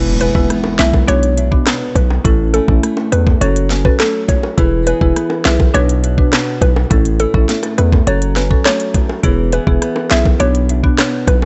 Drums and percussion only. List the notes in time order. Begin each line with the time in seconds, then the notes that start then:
0.21 closed hi-hat
0.35 kick
0.50 cross-stick, closed hi-hat
0.64 high bongo
0.79 snare, clap, closed hi-hat
0.94 kick, high bongo
1.08 closed hi-hat
1.23 closed hi-hat
1.38 closed hi-hat
1.52 kick
1.67 cross-stick, snare, clap, closed hi-hat
1.95 kick, closed hi-hat, low bongo
2.10 high bongo
2.25 kick, closed hi-hat
2.54 closed hi-hat
2.68 kick
2.83 cross-stick, closed hi-hat
2.97 high bongo
3.12 closed hi-hat
3.27 kick, high bongo
3.41 closed hi-hat
3.56 closed hi-hat
3.70 snare, closed hi-hat
3.85 kick
4.00 cross-stick, snare, clap, closed hi-hat
4.28 kick, closed hi-hat, low bongo
4.43 high bongo
4.58 kick, closed hi-hat
4.87 closed hi-hat
5.01 kick
5.16 cross-stick, closed hi-hat
5.30 high bongo
5.45 snare, clap, closed hi-hat
5.60 kick, high bongo
5.75 closed hi-hat
5.89 closed hi-hat
6.04 closed hi-hat
6.18 kick
6.33 cross-stick, snare, clap, closed hi-hat
6.61 kick, closed hi-hat, low bongo
6.76 high bongo
6.91 kick, closed hi-hat
7.05 closed hi-hat
7.20 closed hi-hat
7.34 kick
7.49 snare, closed hi-hat
7.63 closed hi-hat, high bongo
7.78 closed hi-hat
7.92 kick, high bongo
8.07 closed hi-hat
8.22 closed hi-hat
8.36 snare, closed hi-hat
8.51 kick
8.65 cross-stick, snare, clap, closed hi-hat
8.80 closed hi-hat
8.94 kick, closed hi-hat, low bongo
9.09 high bongo
9.24 kick, closed hi-hat
9.52 closed hi-hat
9.67 kick
9.82 cross-stick, closed hi-hat
9.96 high bongo
10.11 snare, clap, closed hi-hat
10.25 kick, high bongo
10.40 closed hi-hat
10.55 closed hi-hat
10.69 closed hi-hat
10.84 kick
10.98 cross-stick, snare, clap, closed hi-hat
11.27 kick, closed hi-hat, low bongo